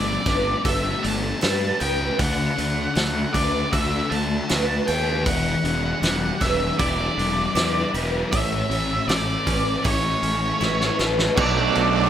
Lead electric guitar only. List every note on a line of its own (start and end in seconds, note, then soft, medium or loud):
0.00 0.61 D5 medium
0.66 1.05 E5 medium
1.03 1.80 A5 loud
1.80 2.16 G5 medium
2.19 3.38 F#5 medium
3.33 3.72 D5 medium
3.73 4.12 E5 loud
4.10 4.87 A5 loud
4.87 5.26 G5 medium
5.27 6.45 F#5 medium
6.41 6.78 E5 medium
6.79 7.90 D5 medium
8.32 9.08 E5 loud
9.09 9.86 D5 medium
9.87 10.96 C#5 medium
11.37 12.10 D5 medium